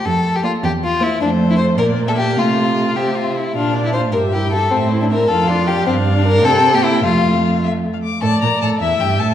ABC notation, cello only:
X:1
M:6/8
L:1/8
Q:3/8=103
K:F
V:1 name="Cello" clef=bass
F,,3 E,,3 | F,,3 B,,3 | C,3 C,2 z | B,,3 G,,3 |
A,,3 F,,3 | G,,3 C,3 | F,,4- F,, z | [K:Aphr] A,, B,, A,, E,, G,, A,, |]